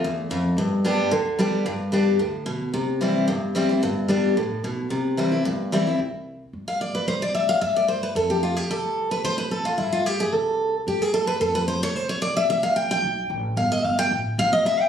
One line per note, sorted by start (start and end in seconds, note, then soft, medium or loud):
0.04 0.26 E2 medium
0.04 0.30 E2 medium
0.30 0.53 F2 medium
0.30 0.56 F2 medium
0.57 0.99 G2 loud
0.57 1.09 G2 loud
0.85 1.10 G3 medium
0.85 1.11 B3 medium
0.85 1.11 D4 medium
0.85 1.11 G4 medium
1.11 1.54 D2 medium
1.11 1.63 D3 medium
1.39 1.64 G3 medium
1.39 1.65 B3 medium
1.39 1.65 D4 medium
1.39 1.65 G4 loud
1.65 2.08 G2 medium
1.65 2.17 G2 loud
1.92 2.18 G3 medium
1.92 2.19 B3 medium
1.92 2.19 D4 medium
1.92 2.19 G4 medium
2.19 2.62 D2 medium
2.19 2.45 A2 medium
2.46 2.72 B2 medium
2.74 3.16 C2 medium
2.74 3.25 C3 medium
3.01 3.27 E3 medium
3.01 3.27 G3 medium
3.01 3.27 C4 medium
3.01 3.27 E4 medium
3.28 3.71 G1 medium
3.28 3.80 G2 medium
3.55 3.69 E3 medium
3.55 3.69 G3 medium
3.55 3.69 C4 medium
3.55 3.68 E4 medium
3.69 3.83 C4 soft
3.69 3.82 E4 medium
3.82 4.04 G1 loud
3.82 4.34 G2 medium
4.08 4.33 G1 medium
4.08 4.35 G3 medium
4.08 4.35 B3 medium
4.08 4.35 D4 medium
4.08 4.36 G4 medium
4.37 4.60 A1 medium
4.37 4.63 A2 medium
4.64 4.87 B1 medium
4.64 4.90 B2 medium
4.90 5.33 C2 medium
4.90 5.42 C3 medium
5.17 5.31 E3 medium
5.17 5.32 G3 medium
5.17 5.32 C4 medium
5.17 5.30 E4 medium
5.32 5.45 C4 soft
5.32 5.44 E4 medium
5.45 5.87 G1 medium
5.45 5.97 G2 medium
5.72 5.86 E3 medium
5.72 5.86 G3 medium
5.72 5.86 C4 medium
5.72 5.86 E4 loud
5.87 6.00 C4 soft
5.87 5.99 E4 medium
5.99 6.42 C2 medium
6.53 6.96 G2 medium
6.68 6.80 F5 medium
6.81 6.94 D5 medium
6.95 7.07 B4 medium
7.08 7.50 C2 loud
7.08 7.21 C5 medium
7.22 7.34 D5 medium
7.35 7.48 E5 medium
7.49 7.61 F5 loud
7.61 8.04 G2 medium
7.61 7.75 E5 medium
7.76 7.88 D5 medium
7.88 8.02 C5 medium
8.03 8.16 B4 medium
8.15 8.58 F2 loud
8.15 8.30 A4 medium
8.30 8.42 G4 medium
8.43 8.57 F4 medium
8.56 8.69 G4 medium
8.70 9.13 C2 medium
8.70 9.09 A4 medium
9.11 9.24 B4 medium
9.24 9.67 C2 medium
9.24 9.37 C5 loud
9.38 9.51 B4 medium
9.51 9.65 A4 medium
9.65 9.78 F4 medium
9.78 10.21 G2 medium
9.78 9.92 E4 medium
9.93 10.06 F4 medium
10.06 10.20 G4 medium
10.20 10.33 G#4 medium
10.33 10.75 C2 medium
10.33 10.74 A4 loud
10.87 11.29 G2 medium
10.87 11.02 G4 medium
11.02 11.13 G#4 medium
11.14 11.27 A4 medium
11.27 11.40 B4 loud
11.41 11.83 F2 loud
11.41 11.55 A4 medium
11.55 11.67 B4 medium
11.68 11.82 C5 medium
11.83 11.96 C#5 loud
11.95 12.38 C2 medium
11.95 12.09 C5 medium
12.09 12.21 C#5 medium
12.22 12.36 D5 loud
12.37 12.49 E5 medium
12.49 12.92 C2 loud
12.49 12.63 E5 loud
12.63 12.76 F5 loud
12.76 12.90 G5 medium
12.91 13.28 G5 loud
13.02 13.26 B1 medium
13.30 13.53 A1 medium
13.57 13.78 G1 medium
13.57 13.71 F5 medium
13.72 13.84 D#5 medium
13.84 14.08 G1 medium
13.84 13.98 F5 medium
13.99 14.12 G5 loud
14.11 14.35 A1 medium
14.38 14.62 B1 medium
14.38 14.52 F5 medium
14.53 14.66 D#5 medium
14.65 14.89 C2 loud
14.65 14.81 E5 medium
14.81 14.89 G5 loud